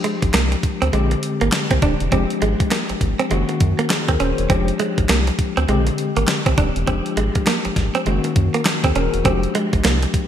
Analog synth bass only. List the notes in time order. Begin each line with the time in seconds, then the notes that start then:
0.23 G#1
0.34 C2
0.82 D2
0.94 A#1
1.42 G#1
1.71 C2
1.83 D#1
2.01 E1
2.12 F1
2.42 G#1
2.90 G#1
3.01 G#1
3.31 F#1
3.61 F#2
4.09 D#2
4.20 D#1
4.39 E1
4.50 F1
4.98 G#1
5.10 C2
5.57 D2
5.69 A#1
6.17 G#1
6.46 C2
6.58 D#1
6.76 E1
6.88 F1
7.17 G#1
7.65 G#1
7.76 G#1
8.07 F#1
8.36 F#2
8.84 D#2
8.96 D#1
9.14 E1
9.25 F1
9.73 G#1
9.85 C2